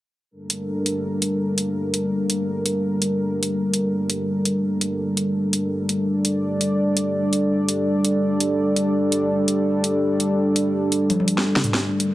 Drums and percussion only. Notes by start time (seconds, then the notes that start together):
0.50 closed hi-hat
0.86 closed hi-hat
1.22 closed hi-hat
1.58 closed hi-hat
1.94 closed hi-hat
2.30 closed hi-hat
2.66 closed hi-hat
3.02 closed hi-hat
3.43 closed hi-hat
3.74 closed hi-hat
4.10 closed hi-hat
4.45 closed hi-hat
4.81 closed hi-hat
5.17 closed hi-hat
5.53 closed hi-hat
5.89 closed hi-hat
6.25 closed hi-hat
6.61 closed hi-hat
6.97 closed hi-hat
7.33 closed hi-hat
7.69 closed hi-hat
8.05 closed hi-hat
8.40 closed hi-hat
8.76 closed hi-hat
9.12 closed hi-hat
9.48 closed hi-hat
9.84 closed hi-hat
10.20 closed hi-hat
10.56 closed hi-hat
10.92 closed hi-hat
11.10 closed hi-hat, high tom
11.20 high tom
11.28 closed hi-hat
11.38 snare
11.56 snare, mid tom
11.64 closed hi-hat, mid tom
11.74 snare
12.00 closed hi-hat